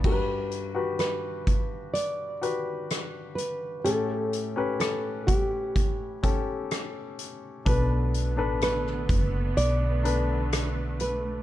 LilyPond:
<<
  \new Staff \with { instrumentName = "Nylon-string guitar" } { \time 4/4 \key g \lydian \tempo 4 = 63 b'4 b'4 d''4. b'8 | a'4 a'8 g'2 r8 | b'4 b'4 d''4. b'8 | }
  \new Staff \with { instrumentName = "Grand piano" } { \time 4/4 \key g \lydian <fis' g' ais' b'>8. <fis' g' b'>4.~ <fis' g' b'>16 <fis' g' b'>4. | <cis' g' a'>8. <cis' g' b'>4.~ <cis' g' b'>16 <cis' g' a'>4. | <d' a' b'>8. <d' a' b'>4.~ <d' a' b'>16 <d' a' b'>4. | }
  \new Staff \with { instrumentName = "Grand piano" } { \clef bass \time 4/4 \key g \lydian g,4. r2 r8 | a,4. r2 r8 | b,4. r2 r8 | }
  \new Staff \with { instrumentName = "String section" } { \time 4/4 \key g \lydian r1 | r1 | <d a b>1 | }
  \new Staff \with { instrumentName = "Fretless electric bass" } { \clef bass \time 4/4 \key g \lydian r1 | r1 | b,,8. a,,8. fis,,8 b,,2 | }
  \new DrumStaff \with { instrumentName = "Drums" } \drummode { \time 4/4 <cymc bd>8 hh8 <hh ss>8 <hh bd>8 hh8 hh8 <hh ss>8 hh8 | hh8 hh8 <hh ss>8 <hh bd>8 <hh bd>8 <hh bd>8 <hh ss>8 hh8 | <hh bd>8 hh8 <hh ss>16 ss16 <hh bd>8 hh8 hh8 <hh ss>8 hh8 | }
>>